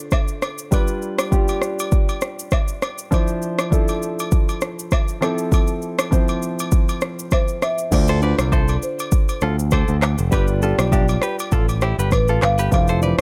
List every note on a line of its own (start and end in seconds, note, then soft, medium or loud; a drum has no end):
0.00 0.74 D3 medium
0.00 0.72 D4 medium
0.00 0.73 F4 medium
0.00 0.74 C5 medium
0.00 0.74 D5 medium
0.11 kick medium
0.11 cross-stick medium
0.11 high agogo medium
0.11 low woodblock medium
0.11 shaker medium
0.28 shaker soft
0.42 cross-stick medium
0.42 high agogo medium
0.42 shaker soft
0.58 shaker medium
0.71 1.29 G3 medium
0.71 1.29 D4 medium
0.71 1.30 F4 medium
0.71 1.30 B4 loud
0.71 kick loud
0.71 high agogo medium
0.71 shaker medium
0.88 shaker medium
1.02 shaker soft
1.19 cross-stick loud
1.19 high agogo medium
1.19 shaker medium
1.31 2.46 G3 medium
1.31 2.46 D4 medium
1.31 2.47 F4 medium
1.31 2.47 G4 medium
1.31 kick loud
1.31 shaker medium
1.48 high agogo medium
1.48 shaker medium
1.62 cross-stick medium
1.62 shaker medium
1.79 high agogo medium
1.79 shaker medium
1.92 kick loud
1.92 shaker medium
2.09 high agogo medium
2.09 shaker soft
2.21 cross-stick medium
2.21 shaker medium
2.39 shaker medium
2.51 kick medium
2.51 cross-stick medium
2.51 high agogo medium
2.51 low woodblock medium
2.51 shaker medium
2.68 shaker medium
2.82 cross-stick medium
2.82 high agogo medium
2.82 shaker soft
2.98 shaker medium
3.11 3.69 F3 medium
3.11 3.69 D4 medium
3.11 3.70 E4 medium
3.11 3.70 C5 medium
3.11 kick loud
3.11 high agogo medium
3.11 shaker medium
3.27 shaker medium
3.42 shaker soft
3.59 cross-stick loud
3.59 high agogo medium
3.59 shaker medium
3.71 4.86 F3 medium
3.71 4.86 D4 medium
3.71 4.87 E4 medium
3.71 4.87 A4 medium
3.71 kick loud
3.71 shaker medium
3.88 high agogo medium
3.88 shaker soft
4.03 shaker medium
4.19 high agogo medium
4.19 shaker medium
4.32 kick loud
4.32 shaker medium
4.49 high agogo medium
4.49 shaker soft
4.61 cross-stick medium
4.61 shaker medium
4.79 shaker medium
4.91 kick medium
4.91 cross-stick medium
4.91 high agogo medium
4.91 low woodblock medium
4.91 shaker medium
5.08 shaker medium
5.21 6.07 F3 medium
5.21 6.08 C4 medium
5.21 6.08 E4 medium
5.21 6.09 A4 medium
5.21 cross-stick medium
5.21 high agogo medium
5.21 shaker soft
5.38 shaker medium
5.52 kick loud
5.52 high agogo medium
5.52 shaker medium
5.67 shaker medium
5.82 shaker soft
5.99 cross-stick loud
5.99 high agogo medium
5.99 shaker medium
6.11 7.26 F3 medium
6.11 7.26 C4 medium
6.11 7.27 E4 medium
6.11 7.27 C5 medium
6.11 kick loud
6.11 shaker medium
6.28 high agogo medium
6.28 shaker soft
6.42 shaker medium
6.59 high agogo medium
6.59 shaker medium
6.72 kick loud
6.72 shaker medium
6.89 high agogo medium
6.89 shaker soft
7.01 cross-stick medium
7.01 shaker medium
7.19 shaker medium
7.31 7.63 C5 medium
7.31 kick medium
7.31 cross-stick medium
7.31 high agogo medium
7.31 low woodblock medium
7.31 shaker medium
7.48 shaker medium
7.62 7.93 E5 loud
7.62 cross-stick medium
7.62 high agogo medium
7.62 shaker soft
7.78 shaker medium
7.91 8.32 D2 loud
7.91 8.19 D3 medium
7.91 8.20 D4 medium
7.91 8.21 F4 medium
7.91 8.21 C5 medium
7.91 8.85 D5 loud
7.91 kick loud
7.91 crash medium
7.91 high agogo medium
7.91 shaker medium
8.08 8.20 A4 medium
8.08 8.19 C5 medium
8.08 shaker medium
8.21 9.36 D3 medium
8.21 9.36 D4 medium
8.21 9.37 F4 medium
8.21 8.36 B4 medium
8.21 9.37 C5 medium
8.21 8.35 D5 medium
8.21 shaker soft
8.39 8.76 C2 medium
8.39 cross-stick loud
8.39 high agogo medium
8.39 shaker medium
8.52 8.76 A4 medium
8.52 8.76 C5 medium
8.52 kick loud
8.52 low woodblock medium
8.52 shaker medium
8.68 high agogo medium
8.68 shaker medium
8.82 9.38 C5 medium
8.82 shaker medium
8.99 high agogo medium
8.99 shaker medium
9.12 kick loud
9.12 shaker medium
9.29 high agogo medium
9.29 shaker medium
9.41 9.82 D2 loud
9.41 9.56 F4 medium
9.41 9.55 A4 medium
9.41 cross-stick medium
9.41 shaker medium
9.59 shaker medium
9.71 9.96 A4 medium
9.71 9.96 C5 medium
9.71 kick medium
9.71 cross-stick medium
9.71 high agogo medium
9.71 shaker medium
9.88 10.15 D2 medium
9.88 shaker medium
10.02 cross-stick medium
10.02 clap medium
10.02 high agogo medium
10.02 shaker soft
10.18 10.30 F1 medium
10.18 shaker medium
10.31 10.59 G3 medium
10.31 10.60 D4 medium
10.31 10.61 F4 medium
10.31 10.46 G4 medium
10.31 10.45 B4 medium
10.31 10.61 B4 loud
10.31 kick loud
10.31 high agogo medium
10.31 shaker medium
10.48 shaker medium
10.61 11.76 G3 medium
10.61 11.76 D4 medium
10.61 11.77 F4 medium
10.61 10.76 F4 medium
10.61 11.77 G4 medium
10.61 10.75 A4 medium
10.61 shaker soft
10.79 11.16 B1 medium
10.79 cross-stick loud
10.79 high agogo medium
10.79 shaker medium
10.92 11.06 D4 medium
10.92 11.05 G4 medium
10.92 kick loud
10.92 low woodblock medium
10.92 shaker medium
11.08 high agogo medium
11.08 shaker soft
11.22 11.36 G4 medium
11.22 11.35 B4 medium
11.22 cross-stick medium
11.22 shaker medium
11.39 high agogo medium
11.39 shaker loud
11.52 11.92 A1 medium
11.52 11.66 F4 medium
11.52 11.65 A4 medium
11.52 kick loud
11.52 shaker medium
11.69 high agogo medium
11.69 shaker medium
11.81 11.96 E4 medium
11.81 11.95 G4 medium
11.81 cross-stick medium
11.81 shaker medium
11.99 12.12 G1 medium
11.99 12.10 G4 medium
11.99 12.09 B4 medium
11.99 shaker medium
12.11 12.38 A1 medium
12.11 12.43 B4 loud
12.11 kick medium
12.11 cross-stick medium
12.11 high agogo medium
12.11 shaker medium
12.28 12.40 F4 medium
12.28 12.39 A4 medium
12.28 shaker medium
12.42 12.68 G1 medium
12.42 12.70 F5 loud
12.42 cross-stick medium
12.42 clap medium
12.42 high agogo medium
12.42 shaker soft
12.58 12.70 G4 medium
12.58 12.69 B4 medium
12.58 shaker medium
12.71 13.12 F1 loud
12.71 13.00 F3 medium
12.71 13.00 D4 medium
12.71 13.01 E4 medium
12.71 13.01 C5 medium
12.71 13.21 F5 loud
12.71 kick loud
12.71 high agogo medium
12.71 shaker medium
12.88 13.00 A4 medium
12.88 12.99 C5 medium
12.88 shaker medium
13.01 13.21 E3 medium
13.01 13.21 D4 medium
13.01 13.16 B4 medium
13.01 13.21 C5 medium
13.01 13.15 D5 medium
13.01 shaker soft
13.07 13.21 F3 medium